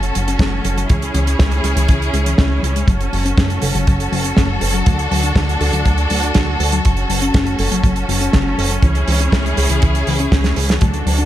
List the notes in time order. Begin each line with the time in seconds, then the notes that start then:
Already playing: F#1 C#4 F#4 A4
0.03 closed hi-hat
0.15 F#1 F#3, closed hi-hat
0.28 C#4, closed hi-hat
0.39 F#1 C#4, kick, snare, closed hi-hat
0.65 F#1 A4, closed hi-hat
0.77 F#3, closed hi-hat
0.90 C#2 E3 E4 G#4, kick, closed hi-hat
1.02 closed hi-hat
1.14 C#2 E3, closed hi-hat
1.27 C#4, closed hi-hat
1.39 C#2 C#4, kick, snare, closed hi-hat
1.52 closed hi-hat
1.64 C#2 G#4, closed hi-hat
1.76 C#2 E3, closed hi-hat
1.89 C#2 E3, kick, closed hi-hat
2.02 closed hi-hat
2.13 C#2 G#3, closed hi-hat
2.26 E3, closed hi-hat
2.38 C#2 C#4, kick, snare, closed hi-hat
2.63 C#2 C#4, closed hi-hat
2.76 G#3, closed hi-hat
2.88 F#1 F#3 F#4 A4, kick, closed hi-hat
3.01 closed hi-hat
3.13 F#1 F#3, open hi-hat
3.25 C#4, closed hi-hat
3.37 F#1 C#4, kick, snare, closed hi-hat
3.50 closed hi-hat
3.62 F#1 A4, open hi-hat
3.75 F#1 F#3, closed hi-hat
3.87 F#1 F#3, kick, closed hi-hat
4.00 closed hi-hat
4.12 F#1 F#3, open hi-hat
4.24 C#4, closed hi-hat
4.37 F#1 C#4, kick, snare, closed hi-hat
4.61 F#1 A4, open hi-hat
4.74 F#3, closed hi-hat
4.86 D2 F#3 D4, kick, closed hi-hat
4.99 closed hi-hat
5.11 D2 F#3, open hi-hat
5.23 D4, closed hi-hat
5.36 D2 D4, kick, snare, closed hi-hat
5.49 closed hi-hat
5.61 D2 A4, open hi-hat
5.73 D2 F#3, closed hi-hat
5.85 D2 F#3, kick, closed hi-hat
5.98 closed hi-hat
6.10 D2 F#3, open hi-hat
6.23 D4, closed hi-hat
6.34 D2 D4, kick, snare, closed hi-hat
6.60 D2 A4, open hi-hat
6.72 F#3, closed hi-hat
6.85 F#1 F#3 C#4, kick, closed hi-hat
6.97 closed hi-hat
7.09 F#1 F#3, open hi-hat
7.22 C#4, closed hi-hat
7.34 F#1 C#4, kick, snare, closed hi-hat
7.46 closed hi-hat
7.59 F#1 A4, open hi-hat
7.71 F#1 F#3, closed hi-hat
7.83 F#1 F#3, kick, closed hi-hat
7.96 closed hi-hat
8.09 F#1 F#3, open hi-hat
8.21 C#4, closed hi-hat
8.33 F#1 C#4, kick, snare, closed hi-hat
8.58 F#1 A4, open hi-hat
8.71 F#3, closed hi-hat
8.82 C#2 E3 E4 G#4, kick, closed hi-hat
8.95 closed hi-hat
9.08 C#2 E3, open hi-hat
9.19 C#4, closed hi-hat
9.32 C#2 C#4, kick, snare, closed hi-hat
9.46 closed hi-hat
9.57 C#2 G#4, open hi-hat
9.69 C#2 E3, closed hi-hat
9.82 C#2 E3, kick, closed hi-hat
9.95 closed hi-hat
10.07 C#2 E3, open hi-hat
10.19 C#4, closed hi-hat
10.32 C#2 C#4, kick, snare, closed hi-hat
10.44 snare, closed hi-hat
10.56 C#2 G#4, open hi-hat
10.69 E3, snare, closed hi-hat
10.81 D2 F#3 D4 F#4 A4, kick, closed hi-hat, riser
10.94 closed hi-hat
11.06 D2 F#3, open hi-hat
11.18 D4, closed hi-hat